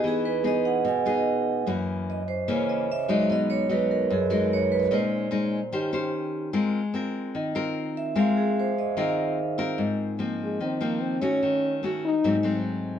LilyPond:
<<
  \new Staff \with { instrumentName = "Vibraphone" } { \time 4/4 \key aes \major \tempo 4 = 148 gis'8 b'8 dis''8 ges''8 gis''4 r4 | r4 ees''8 c''8 des''8 ees''8 fes''8 d''8 | dis''8 des''8 b'8 bes'8 gis'8 bes'8 des''8 b'8 | c''2. r4 |
r2. r8 fes''8 | f''8 aes'8 c''8 ees''8 f''4.~ f''16 r16 | r1 | r1 | }
  \new Staff \with { instrumentName = "French horn" } { \time 4/4 \key aes \major r1 | r1 | r1 | r1 |
r1 | r1 | r4. aes8 c'8 bes8 c'8 des'8~ | des'4 r8 ees'4. r4 | }
  \new Staff \with { instrumentName = "Nylon-string guitar" } { \time 4/4 \key aes \major << { <b dis' gis'>4 <b dis' gis'>4 r8 <b dis' gis'>4. | <fes bes des'>4. r8 <fes bes des'>4 r8 <ges aes ees'>8~ | <ges aes ees'>4 <fis gis dis'>4 r8 <fis gis dis'>4. | <aes des' ees'>4 <aes des' ees'>8 r8 <des' g' c''>8 <des' g' c''>4. |
<c' f' bes'>8 r8 <c' f' bes'>4. <c' f' bes'>4. | <c' f' bes'>4. r8 <c' f' bes'>4 r8 <c' f' bes'>8~ | <c' f' bes'>4 <f bes c'>4. <f bes c'>4 <a des' ges'>8~ | <a des' ges'>4 <a des' ges'>8 r8 <ges a c'>8 <ges a c'>4. | } \\ { e2 b,2 | ges,2 des2 | b,2 fis,2 | bes,2 ees2 |
aes2 ees2 | aes2 ees2 | aes,2 ees2 | ees2 aes,2 | } >> }
>>